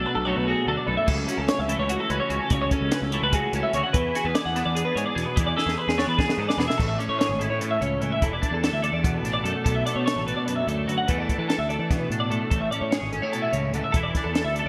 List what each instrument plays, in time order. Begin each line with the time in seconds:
Already playing: clean electric guitar B2 F#3 A3 D4
0.06 clean electric guitar B4
0.15 picked electric bass B1, clean electric guitar A4
0.25 clean electric guitar F#3 A3 C#5
0.36 picked electric bass B1, clean electric guitar B4
0.47 clean electric guitar F#4 G#4
0.67 picked electric bass D2, clean electric guitar D4 A4
0.77 clean electric guitar D5
0.86 picked electric bass B1, clean electric guitar F#2 A4 B4
0.97 clean electric guitar E5
1.06 picked electric bass C#2, clean electric guitar C#3 A4, kick, crash
1.28 clean electric guitar C#4 F#4, snare, closed hi-hat
1.38 picked electric bass C#2, clean electric guitar A4
1.48 clean electric guitar C#5, snare, closed hi-hat
1.59 picked electric bass C#2, clean electric guitar E5
1.69 clean electric guitar E3 A3, closed hi-hat
1.79 picked electric bass C#2, clean electric guitar C#5
1.89 clean electric guitar F#4, closed hi-hat
2.00 clean electric guitar A4
2.10 picked electric bass C#2, clean electric guitar C#4 B4, closed hi-hat
2.20 clean electric guitar C#5
2.29 picked electric bass C#2, clean electric guitar C#3 F#4, closed hi-hat
2.41 clean electric guitar A4
2.50 picked electric bass C#2, clean electric guitar C#3 C#5, kick, closed hi-hat
2.62 clean electric guitar C#5
2.71 clean electric guitar C#4 A4, kick, closed hi-hat
2.81 picked electric bass C#2
2.91 clean electric guitar B4, snare, closed hi-hat
3.02 picked electric bass C#2, clean electric guitar A4
3.12 clean electric guitar E3 A3 C#5, closed hi-hat
3.22 picked electric bass C#2, clean electric guitar B4
3.33 clean electric guitar F#4 G#4, kick, closed hi-hat
3.53 picked electric bass C#2, clean electric guitar C#4 A4, closed hi-hat
3.63 clean electric guitar E5
3.73 picked electric bass D2, clean electric guitar C#3 F#4 C#5, closed hi-hat
3.84 clean electric guitar F#5
3.93 picked electric bass E2, clean electric guitar E3 B4, kick, closed hi-hat
4.15 clean electric guitar F#4 G#4, snare, closed hi-hat
4.25 picked electric bass E2, clean electric guitar G#4 B4
4.35 clean electric guitar D5, snare, closed hi-hat
4.45 picked electric bass E2, clean electric guitar F#5
4.55 clean electric guitar B3 D4, snare, closed hi-hat
4.65 picked electric bass E2, clean electric guitar D5
4.75 clean electric guitar G#4, closed hi-hat
4.85 clean electric guitar B4
4.96 picked electric bass G#2, clean electric guitar G#4 C#5, closed hi-hat
5.06 clean electric guitar D5
5.15 picked electric bass E2, clean electric guitar B2 G#4, snare, closed hi-hat
5.26 clean electric guitar B4
5.36 picked electric bass E2, clean electric guitar E3 D5, kick, closed hi-hat
5.47 clean electric guitar D5
5.57 clean electric guitar G#4 A4, snare
5.66 picked electric bass E2, snare
5.78 clean electric guitar B4
5.88 picked electric bass E2, clean electric guitar G#4, snare
5.98 clean electric guitar B3 D4 C#5, snare
6.07 picked electric bass E2, clean electric guitar B4
6.18 clean electric guitar G#4, kick, snare
6.29 snare
6.38 picked electric bass G#2, clean electric guitar G#4 A4
6.49 clean electric guitar D5, snare
6.58 picked electric bass E2, clean electric guitar B2 G#4 B4, snare
6.68 clean electric guitar E5, snare
6.78 picked electric bass A1, clean electric guitar A2 A4, kick, crash
6.88 clean electric guitar E5
6.98 clean electric guitar C#4 D5, closed hi-hat
7.09 picked electric bass A2, clean electric guitar C#5
7.19 clean electric guitar G#4 C#5, snare, closed hi-hat
7.29 picked electric bass G#1
7.39 clean electric guitar E4 A4, closed hi-hat
7.50 picked electric bass A2, clean electric guitar C#5
7.59 clean electric guitar A2 A4, closed hi-hat
7.71 clean electric guitar E5
7.81 picked electric bass C#2, clean electric guitar C#4 C#5, closed hi-hat
8.01 picked electric bass C#2, clean electric guitar E3 A4, closed hi-hat
8.12 clean electric guitar E5
8.22 picked electric bass E1, clean electric guitar E3 A4, kick, closed hi-hat
8.33 clean electric guitar D5
8.42 clean electric guitar D4, kick, closed hi-hat
8.51 picked electric bass E2, clean electric guitar A4
8.63 clean electric guitar A4, snare, closed hi-hat
8.72 picked electric bass D2, clean electric guitar E5
8.82 clean electric guitar A4 D5, closed hi-hat
8.93 picked electric bass E2, clean electric guitar D5
9.03 clean electric guitar B2, kick, closed hi-hat
9.14 clean electric guitar B4
9.23 picked electric bass A1, clean electric guitar D4 A4, snare, closed hi-hat
9.34 clean electric guitar D5
9.44 picked electric bass F#2, clean electric guitar A3 A4, closed hi-hat
9.65 picked electric bass B1, clean electric guitar B2 A4, kick, closed hi-hat
9.75 clean electric guitar E5
9.86 clean electric guitar A3 D5, closed hi-hat
9.96 picked electric bass B2, clean electric guitar C#5
10.06 clean electric guitar A4 C#5, snare, closed hi-hat
10.16 picked electric bass A1
10.27 clean electric guitar D4 B4, closed hi-hat
10.36 picked electric bass B2, clean electric guitar D5
10.46 clean electric guitar F#2 B4, closed hi-hat
10.56 clean electric guitar E5
10.67 picked electric bass D2, clean electric guitar A3 D5, closed hi-hat
10.87 picked electric bass D2, clean electric guitar F#3 B4, closed hi-hat
10.98 clean electric guitar F#5
11.08 picked electric bass E2, clean electric guitar E3 A3 D4 A4 B4, kick, closed hi-hat
11.18 clean electric guitar D5
11.29 clean electric guitar D4, kick, closed hi-hat
11.38 picked electric bass E3, clean electric guitar A4
11.49 clean electric guitar A4, snare, closed hi-hat
11.59 picked electric bass D2, clean electric guitar E5
11.69 clean electric guitar A4 D5, closed hi-hat
11.79 picked electric bass E3, clean electric guitar D5
11.90 clean electric guitar B2, kick, snare, closed hi-hat
11.99 clean electric guitar B4
12.09 picked electric bass A2, clean electric guitar D4 A4, closed hi-hat
12.20 clean electric guitar D5
12.30 picked electric bass A2, clean electric guitar A3 A4, closed hi-hat
12.50 picked electric bass A1, clean electric guitar A2 A4, kick, closed hi-hat
12.61 clean electric guitar E5
12.71 clean electric guitar C#4 D5, closed hi-hat
12.81 picked electric bass A2, clean electric guitar C#5
12.91 clean electric guitar G#4 C#5, snare, closed hi-hat
13.02 picked electric bass G#1
13.12 clean electric guitar C#4 A4, closed hi-hat
13.22 picked electric bass A2, clean electric guitar E4 C#5
13.33 clean electric guitar B2 A4, closed hi-hat
13.42 clean electric guitar E5
13.52 picked electric bass C#2, clean electric guitar C#3 C#5, closed hi-hat
13.73 picked electric bass C#2, clean electric guitar D3 A4, closed hi-hat
13.84 clean electric guitar E5
13.92 picked electric bass E1, clean electric guitar E3 A4, kick, closed hi-hat
14.03 clean electric guitar D5
14.15 clean electric guitar D4, kick, snare, closed hi-hat
14.24 picked electric bass E2, clean electric guitar A4
14.34 clean electric guitar A4, snare, closed hi-hat
14.44 picked electric bass D2, clean electric guitar E5
14.55 clean electric guitar D5, closed hi-hat
14.59 clean electric guitar A4